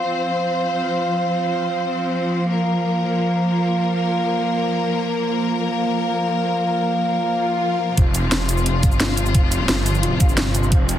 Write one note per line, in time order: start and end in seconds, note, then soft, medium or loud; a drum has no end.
0.00 7.94 F3 medium
0.00 2.45 C4 medium
0.00 2.47 F4 medium
0.00 2.47 C5 medium
0.00 2.47 F5 medium
2.49 7.94 A#3 medium
2.49 5.06 F4 medium
2.49 7.95 A#4 medium
2.49 5.06 C5 medium
2.49 5.06 F5 medium
5.23 7.95 F4 medium
5.23 7.95 C5 medium
5.23 7.95 F5 medium
7.29 swell medium
7.97 8.30 F1 loud
7.97 10.99 C3 medium
7.97 10.99 F3 medium
7.97 8.03 F4 medium
7.97 10.71 F4 medium
7.97 8.03 C5 medium
7.97 8.03 F5 medium
7.97 kick loud
7.97 closed hi-hat loud
8.15 closed hi-hat medium
8.15 cabasa medium
8.32 8.82 F1 loud
8.32 snare loud
8.32 closed hi-hat loud
8.49 closed hi-hat medium
8.49 cabasa medium
8.57 cabasa soft
8.66 closed hi-hat loud
8.83 9.33 G1 medium
8.83 8.89 F4 medium
8.83 8.89 C5 medium
8.83 8.89 F5 medium
8.83 kick loud
8.83 closed hi-hat medium
8.83 cabasa medium
8.92 cabasa soft
9.00 snare loud
9.00 closed hi-hat medium
9.17 closed hi-hat medium
9.17 cabasa medium
9.26 cabasa soft
9.35 9.68 F1 loud
9.35 9.40 F4 medium
9.35 9.40 C5 medium
9.35 9.40 F5 medium
9.35 kick loud
9.35 closed hi-hat loud
9.52 closed hi-hat medium
9.52 cabasa medium
9.69 10.19 G1 loud
9.69 snare loud
9.69 closed hi-hat loud
9.86 open hi-hat medium
9.86 cabasa medium
9.95 cabasa soft
10.03 closed hi-hat loud
10.20 10.70 G1 loud
10.20 10.26 F4 medium
10.20 10.26 C5 medium
10.20 10.26 F5 medium
10.20 kick loud
10.20 closed hi-hat medium
10.20 cabasa medium
10.29 cabasa soft
10.37 snare loud
10.37 closed hi-hat loud
10.55 closed hi-hat medium
10.55 cabasa medium
10.63 cabasa soft
10.72 10.99 F1 loud
10.72 10.99 C4 medium
10.72 10.77 F4 medium
10.72 10.77 C5 medium
10.72 10.77 F5 medium
10.72 kick loud
10.72 closed hi-hat loud
10.89 closed hi-hat medium
10.89 cabasa medium